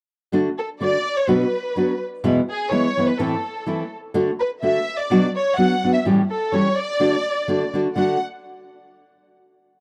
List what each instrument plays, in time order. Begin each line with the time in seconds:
0.32 nylon-string guitar D3 A3 D4 F#4
0.58 violin section A4
0.80 nylon-string guitar D3 A3 D4 F#4, violin section D5
1.17 violin section C#5
1.27 nylon-string guitar B2 F#3 B3 D4 F#4, violin section B4
1.76 nylon-string guitar F#3 B3 D4 F#4
2.24 nylon-string guitar E2 B2 E3 G#3 B3 E4
2.50 violin section G#4
2.71 nylon-string guitar E3 G#3 B3 E4, violin section C#5
2.97 nylon-string guitar E3 G#3 B3 E4
3.09 violin section B4
3.19 nylon-string guitar A2 E3 A3 C4 E4, violin section A4
3.66 nylon-string guitar E3 A3 C4 E4
4.14 nylon-string guitar D3 A3 D4 F#4
4.40 violin section B4
4.62 nylon-string guitar D3 A3 D4 F#4, violin section E5
4.98 violin section D5
5.10 nylon-string guitar B2 F#3 B3 D4 F#4
5.35 violin section C#5
5.56 nylon-string guitar F#3 B3 D4 F#4, violin section F#5
5.83 nylon-string guitar F#3 B3 D4 F#4
5.93 violin section E5
6.05 nylon-string guitar A2 E3 G3 C#4 G4
6.30 violin section A4
6.52 nylon-string guitar E3 G3 C#4 G4, violin section C#5
6.77 violin section D5
7.00 nylon-string guitar D3 A3 D4 F#4
7.48 nylon-string guitar D3 A3 D4 F#4
7.73 nylon-string guitar D3 A3 D4 F#4
7.96 nylon-string guitar D3 A3 D4 F#4, violin section F#5